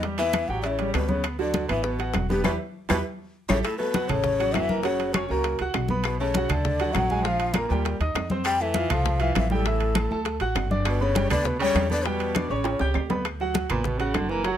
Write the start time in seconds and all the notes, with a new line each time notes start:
Already playing: E2
0.03 G3 G4, high bongo, high conga, high timbale
0.18 E3 B3 B4 E5, high conga, high timbale
0.33 high bongo, high conga, high timbale, low timbale, claves
0.48 A1 F#3 G4 F#5 G5, high bongo
0.62 C#3 E4 D5 E5, high bongo, high conga, high timbale
0.67 C#5
0.79 G3 G4, high bongo, high conga, high timbale
0.94 D2 B2 B4, high bongo, low bongo, high conga, high timbale, low timbale, claves
1.09 C#3 B3 B4 C#5, high bongo, high conga
1.24 high bongo, high conga, high timbale, claves
1.39 D3 F#3 F#4 D5, high bongo, high conga
1.54 high bongo, high conga, high timbale, low timbale
1.68 A1 E3 B3 B4 E5, high conga, high timbale, claves
1.83 B2 B4, high bongo, high conga
1.99 F#4 F#5, high bongo, high conga, high timbale
2.14 E1, high bongo, low bongo, high conga, high timbale, low timbale, claves
2.29 G2 B3 G4 B4, high bongo, high conga
2.44 E2 B2 E4 G4 B4, low bongo, high conga, high timbale, claves
2.89 E2 B2 E4 G4 B4, low bongo, high conga, high timbale, claves
3.49 A1 C#3 E4 G4 A4 C#5, low bongo, high conga, high timbale, claves
3.63 A2 A4, high bongo, high conga, high timbale, claves
3.77 B2 A3 A4 B4 A5, high bongo, high conga
3.94 F#3 F#4 F#5, high bongo, high conga, high timbale, low timbale
4.08 A1 C#3 A3 A4 C#5 A5, high conga, low conga, high timbale, claves
4.24 high bongo, high conga, low conga
4.39 F#3 F#4 F#5, high bongo, high conga, high timbale
4.53 F#1 E3 E5, high bongo, low bongo, high conga, high timbale, low timbale, claves
4.69 A#3 A#4 A#5, high bongo, high conga
4.82 C#3 F#3 F#4 C#5 F#5, high bongo, high conga, high timbale
4.99 high conga, high timbale
5.13 F#2 C#4 F#4 C#5 C#6, high bongo, high conga, high timbale, low timbale, claves
5.29 C#2 F#2 A#3 F#4 A#4 A#5, high bongo
5.44 high bongo, high conga, high timbale
5.59 C#2 F#4 F#5 F#6, high bongo, high conga, high timbale
5.74 B1, high bongo, low bongo, high conga, high timbale, low timbale, claves
5.88 B3 B4 B5, high bongo, high conga
6.04 B2 B4, high bongo, high conga, high timbale, claves
6.20 C#3 A3 A4 C#5 A5, high bongo, high conga
6.34 F#3 F#4 F#5, high bongo, high conga, high timbale, low timbale
6.49 D2 D3 A3 A4 D5 A5, high conga, low conga, high timbale, claves
6.65 high bongo, high conga, low conga
6.80 F#3 F#4 F#5, high bongo, high conga, high timbale
6.92 A#1 F#3 F#5, high bongo, low bongo, high conga, high timbale, low timbale, claves
7.10 G#3 G#4 G#5, high bongo, high conga
7.22 F3 F4 F5, high bongo, high conga, high timbale
7.40 high conga, high timbale
7.53 A#2 A#3 A#4 A#5, high bongo, high conga, high timbale, low timbale, claves
7.68 D#2 A#2 G3 G4 B4 G5, high bongo
7.73 A#4
7.85 high bongo, high conga, high timbale
8.00 D#2 D#4 D#5 D#6, high bongo, high conga, high timbale
8.14 F2, high bongo, low bongo, high conga, high timbale, low timbale, claves
8.30 C4 C5 C6, high bongo, high conga
8.45 G3 G5, high bongo, high conga, high timbale, claves
8.60 E3 A3 A4 E5 A5, high bongo, high conga
8.74 F3 F4 F5, high bongo, high conga, high timbale, low timbale
8.90 C2 F3 A3 A4 F5 A5, high conga, low conga, high timbale, claves
9.05 high bongo, high conga, low conga
9.20 E3 F3 F4 E5 F5, high bongo, high conga, high timbale
9.35 A1 E3 E5, high bongo, low bongo, high conga, high timbale, low timbale, claves
9.50 A2 G3 G4 A4 G5, high bongo, high conga
9.65 E3 E4 E5, high bongo, high conga, high timbale
9.80 high conga, high timbale
9.95 A3 A4 A5, high bongo, high conga, high timbale, low timbale, claves
10.11 D2 A3 A4 A5, high bongo
10.25 high bongo, high conga, high timbale
10.40 A1 F#4 F#5 F#6, high bongo, high conga, high timbale
10.55 G1, high bongo, low bongo, high conga, high timbale, low timbale, claves
10.71 D4 D5 D6, high bongo, high conga
10.85 B2 B4, high bongo, high conga, high timbale, claves
11.00 C#3 B3 B4 C#5 B5, high bongo, high conga
11.15 G3 G4 G5, high bongo, high conga, high timbale, low timbale
11.30 D2 D3 B3 B4 D5 B5, high conga, low conga, high timbale, claves
11.44 B2 B4, high bongo, high conga, low conga
11.59 C#3 G3 G4 C#5 G5, high bongo, high conga, high timbale
11.75 E2, high bongo, low bongo, high conga, high timbale, low timbale, claves
11.89 D3 B3 B4 D5 B5, high bongo, high conga
12.05 B2 G3 G4 B4 G5, high bongo, high conga, high timbale
12.20 high conga, high timbale
12.35 D4 D5 D6, high bongo, high conga, high timbale, low timbale, claves
12.49 A1 C#3 C#4 C#5 D5 C#6, high bongo
12.56 C#5
12.64 high bongo, high conga, high timbale
12.79 C#2 G4 G5 G6, high bongo, high conga, low timbale
12.94 D2, high conga, low timbale, claves
13.10 B3 B4 B5, low bongo, high conga, low timbale
13.25 high bongo, high conga, high timbale, claves
13.40 F#3 F#4 F#5, high bongo, high conga
13.54 high bongo, high conga, high timbale, low timbale
13.70 A1 A#2 B3 B4 B5, high conga, low conga, high timbale, claves
13.84 B2, high bongo, high conga, low conga
13.99 C#3 F#4 F#5 F#6, high bongo, high conga, high timbale
14.14 F#1 D3, high bongo, low bongo, high conga, high timbale, low timbale, claves
14.29 E3 A#3 A#4 A#5, high bongo
14.44 F#3 F#4 F#5, high bongo, high conga, high timbale